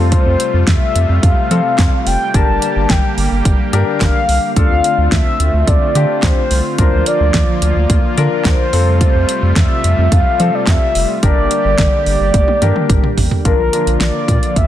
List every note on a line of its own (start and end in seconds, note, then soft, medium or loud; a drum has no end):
0.00 0.15 F2 loud
0.00 2.32 C3 medium
0.00 4.52 G3 medium
0.00 2.32 A3 medium
0.00 0.73 C4 medium
0.00 0.73 F4 medium
0.00 2.30 F4 medium
0.00 0.73 A4 medium
0.12 0.64 C5 medium
0.12 kick loud
0.12 closed hi-hat medium
0.26 0.36 F2 loud
0.40 closed hi-hat medium
0.54 0.64 F2 loud
0.67 0.78 F2 loud
0.67 1.25 E5 medium
0.67 kick loud
0.67 snare loud
0.67 closed hi-hat medium
0.95 1.05 F2 medium
0.95 closed hi-hat medium
1.09 1.19 F2 loud
1.23 1.33 F2 loud
1.23 2.06 F5 loud
1.23 kick loud
1.23 closed hi-hat medium
1.51 1.61 F3 loud
1.51 1.94 C4 medium
1.51 1.94 F4 medium
1.51 1.94 A4 medium
1.51 closed hi-hat medium
1.79 1.89 F2 loud
1.79 kick loud
1.79 snare loud
1.79 clap medium
1.79 closed hi-hat medium
2.07 2.17 F1 medium
2.07 2.36 G5 loud
2.07 open hi-hat medium
2.34 2.44 G1 loud
2.34 8.69 D3 medium
2.34 4.54 A#3 medium
2.34 2.92 D4 medium
2.34 4.54 G4 medium
2.34 2.92 G4 medium
2.34 2.92 A#4 medium
2.34 2.92 A5 loud
2.34 kick loud
2.34 closed hi-hat medium
2.48 2.58 G1 loud
2.62 closed hi-hat medium
2.76 2.86 G1 loud
2.90 3.00 G1 loud
2.90 3.46 G5 loud
2.90 kick loud
2.90 snare loud
2.90 closed hi-hat medium
3.18 3.28 G1 loud
3.18 open hi-hat medium
3.31 3.42 G1 loud
3.45 3.56 G1 loud
3.45 kick loud
3.45 closed hi-hat medium
3.73 3.83 G2 loud
3.73 4.16 D4 medium
3.73 4.16 G4 medium
3.73 4.16 A#4 loud
3.73 closed hi-hat medium
4.01 4.11 G1 loud
4.01 4.53 F5 loud
4.01 kick loud
4.01 snare loud
4.01 clap loud
4.01 closed hi-hat medium
4.28 4.39 C2 loud
4.28 open hi-hat medium
4.56 4.67 D2 loud
4.56 6.76 A3 medium
4.56 6.76 C4 medium
4.56 5.14 D4 medium
4.56 5.14 F4 medium
4.56 11.19 F4 medium
4.56 5.14 A4 medium
4.56 5.08 F5 loud
4.56 kick loud
4.56 closed hi-hat medium
4.70 4.80 D2 medium
4.84 closed hi-hat medium
4.98 5.08 D2 medium
5.12 5.22 D2 loud
5.12 5.69 E5 loud
5.12 kick loud
5.12 snare loud
5.12 closed hi-hat medium
5.40 5.50 D2 loud
5.40 closed hi-hat medium
5.53 5.64 D2 medium
5.67 5.78 D2 loud
5.67 6.23 D5 loud
5.67 kick loud
5.67 closed hi-hat medium
5.95 6.05 D3 loud
5.95 6.38 D4 medium
5.95 6.38 F4 medium
5.95 6.39 G4 medium
5.95 closed hi-hat medium
6.23 6.33 D2 loud
6.23 6.75 C5 medium
6.23 kick loud
6.23 snare loud
6.23 clap medium
6.23 closed hi-hat medium
6.51 6.61 C2 loud
6.51 open hi-hat medium
6.78 6.89 D2 loud
6.78 8.71 F3 medium
6.78 8.71 A#3 medium
6.78 7.36 D4 medium
6.78 7.36 F4 medium
6.78 7.36 A#4 medium
6.78 7.05 C5 loud
6.78 kick loud
6.78 closed hi-hat medium
6.93 7.03 D2 loud
7.06 8.14 D5 medium
7.06 closed hi-hat medium
7.20 7.30 D2 loud
7.34 7.44 D2 medium
7.34 kick loud
7.34 snare loud
7.34 closed hi-hat medium
7.62 7.72 D2 loud
7.62 closed hi-hat medium
7.76 7.86 D2 medium
7.90 8.00 D2 loud
7.90 kick loud
7.90 closed hi-hat medium
8.17 8.28 D3 loud
8.17 8.61 D4 medium
8.17 8.61 F4 medium
8.17 8.61 A#4 loud
8.17 closed hi-hat medium
8.45 8.55 D2 loud
8.45 8.97 C5 loud
8.45 kick loud
8.45 snare loud
8.45 clap medium
8.45 closed hi-hat medium
8.73 9.04 F2 loud
8.73 11.21 C3 medium
8.73 13.41 G3 medium
8.73 11.21 A3 medium
8.73 9.62 C4 medium
8.73 9.62 F4 medium
8.73 9.62 A4 medium
8.73 open hi-hat medium
9.01 9.53 C5 loud
9.01 kick loud
9.01 closed hi-hat medium
9.15 9.25 F2 loud
9.29 closed hi-hat medium
9.43 9.53 F2 loud
9.56 9.67 F2 loud
9.56 10.14 E5 loud
9.56 kick loud
9.56 snare loud
9.56 closed hi-hat medium
9.84 9.94 F2 loud
9.84 closed hi-hat medium
9.98 10.08 F2 loud
10.12 10.22 F2 loud
10.12 10.56 F5 loud
10.12 kick loud
10.12 closed hi-hat medium
10.40 10.50 F3 loud
10.40 10.83 C4 medium
10.40 10.83 F4 medium
10.40 10.83 A4 medium
10.40 closed hi-hat medium
10.55 10.68 D5 loud
10.67 10.78 F2 loud
10.67 11.20 E5 loud
10.67 kick loud
10.67 snare loud
10.67 clap loud
10.67 closed hi-hat medium
10.95 11.05 F1 medium
10.95 open hi-hat medium
11.23 11.33 G1 loud
11.23 13.43 D3 medium
11.23 13.43 A#3 medium
11.23 11.80 D4 medium
11.23 11.80 G4 medium
11.23 13.43 G4 medium
11.23 11.80 A#4 medium
11.23 12.03 D5 loud
11.23 kick loud
11.23 closed hi-hat medium
11.37 11.47 G1 loud
11.51 closed hi-hat medium
11.65 11.75 G1 loud
11.78 11.89 G1 loud
11.78 kick loud
11.78 snare loud
11.78 closed hi-hat medium
12.06 12.16 G1 loud
12.06 13.14 D5 medium
12.06 open hi-hat medium
12.20 12.30 G1 medium
12.34 12.44 G1 loud
12.34 kick loud
12.34 closed hi-hat medium
12.34 high tom medium
12.48 high tom medium
12.62 12.72 G2 loud
12.62 13.05 D4 medium
12.62 13.05 G4 medium
12.62 13.05 A#4 medium
12.62 closed hi-hat medium
12.62 mid tom medium
12.76 mid tom medium
12.89 13.00 G1 loud
12.89 kick loud
12.89 closed hi-hat medium
12.89 mid tom medium
13.04 mid tom medium
13.17 13.28 A1 loud
13.17 floor tom loud
13.17 open hi-hat medium
13.31 floor tom medium
13.45 13.55 A#1 loud
13.45 14.67 D3 medium
13.45 14.67 F3 medium
13.45 14.67 A#3 medium
13.45 13.60 D4 medium
13.45 13.60 F4 medium
13.45 14.67 F4 medium
13.45 13.60 A#4 medium
13.45 13.97 A#4 loud
13.45 kick loud
13.45 closed hi-hat medium
13.59 13.69 A#1 loud
13.73 14.30 D4 medium
13.73 14.30 F4 medium
13.73 14.30 A#4 medium
13.73 closed hi-hat medium
13.87 13.97 A#1 medium
13.87 closed hi-hat soft
14.01 14.11 A#1 loud
14.01 14.58 D5 loud
14.01 snare loud
14.01 closed hi-hat medium
14.28 14.39 A#2 loud
14.28 kick medium
14.28 closed hi-hat medium
14.43 closed hi-hat soft
14.56 14.67 A#1 loud
14.56 14.67 E5 loud
14.56 kick medium
14.56 closed hi-hat medium